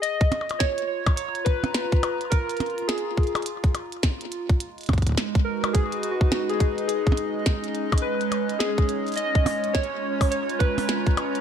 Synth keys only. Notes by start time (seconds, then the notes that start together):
0.02 D#5
0.59 C#5
0.87 C#5
1.16 C#5
1.45 B4
2.30 A#4
2.87 G#4
5.44 A#4
5.73 G#4
6.11 F#4
6.49 G#4
6.88 G#4
8.02 B4
8.59 G#4
9.16 D#5
9.73 C#5
10.30 C#5
10.59 B4